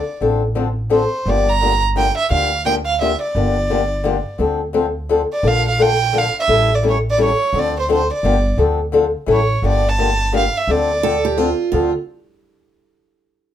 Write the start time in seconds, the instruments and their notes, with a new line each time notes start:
Already playing: violin D5
0.20 upright bass A1, steel-string acoustic guitar D3 F3 C4 D4 A4
0.55 steel-string acoustic guitar D3 F3 C4 D4 A4
0.90 steel-string acoustic guitar D3 F3 C4 D4 A4
0.94 violin C5
1.26 upright bass G1, steel-string acoustic guitar D3 F3 A#3 D4 G4, violin D5
1.49 violin A#5
1.61 steel-string acoustic guitar D3 F3 A#3 D4 G4
1.96 steel-string acoustic guitar D3 F3 A#3 D4 G4, violin G5
2.17 violin E5
2.30 upright bass D2, steel-string acoustic guitar D3 F3 A#3 D4 G4, violin F5
2.65 steel-string acoustic guitar D3 F3 A#3 D4 G4, violin G5
2.86 violin F5
3.01 steel-string acoustic guitar D3 F3 A#3 D4 G4, violin E5
3.21 violin D5
3.35 upright bass G1, steel-string acoustic guitar D3 F3 A#3 D4 G4
3.70 steel-string acoustic guitar D3 F3 A#3 D4 G4
4.04 steel-string acoustic guitar D3 F3 A#3 D4 G4
4.38 upright bass D2, steel-string acoustic guitar D3 F3 C4 D4 A4
4.73 steel-string acoustic guitar D3 F3 C4 D4 A4
5.09 steel-string acoustic guitar D3 F3 C4 D4 A4
5.33 violin D5
5.43 upright bass A#1, steel-string acoustic guitar D3 F3 A#3 D4 A4
5.47 violin F5
5.68 violin F5
5.79 steel-string acoustic guitar D3 F3 A#3 D4 A4, violin G5
6.13 steel-string acoustic guitar D3 F3 A#3 D4 A4
6.18 violin F5
6.39 violin E5
6.48 upright bass A1, steel-string acoustic guitar E3 G3 C#4 E4 A4
6.75 violin D5
6.83 steel-string acoustic guitar E3 G3 C#4 E4 A4
6.89 violin C#5
7.10 violin D5
7.18 steel-string acoustic guitar E3 G3 C#4 E4 A4
7.24 violin C#5
7.53 upright bass D2, steel-string acoustic guitar D3 F3 C4 D4 A4
7.59 violin D5
7.80 violin C5
7.88 steel-string acoustic guitar D3 F3 C4 D4 A4
7.93 violin C5
8.13 violin D5
8.23 upright bass G1, steel-string acoustic guitar D3 F3 A#3 D4 G4
8.57 upright bass D2, steel-string acoustic guitar D3 F3 C4 D4 A4
8.92 steel-string acoustic guitar D3 F3 C4 D4 A4
9.26 upright bass A1, steel-string acoustic guitar E3 G3 C#4 E4 A4
9.32 violin C#5
9.62 upright bass G1, steel-string acoustic guitar D3 F3 A#3 D4 G4
9.67 violin D5
9.88 violin A5
9.98 steel-string acoustic guitar D3 F3 A#3 D4 G4
10.32 steel-string acoustic guitar D3 F3 A#3 D4 G4
10.37 violin F5
10.57 violin E5
10.68 upright bass D2, steel-string acoustic guitar D3 F3 C4 D4 A4, violin D5
11.03 steel-string acoustic guitar D3 F3 C4 D4 A4
11.25 steel-string acoustic guitar G4
11.37 steel-string acoustic guitar D3 F3 C4 D4 F4 A4
11.72 upright bass D2, steel-string acoustic guitar D3 F3 C4 D4 F4 A4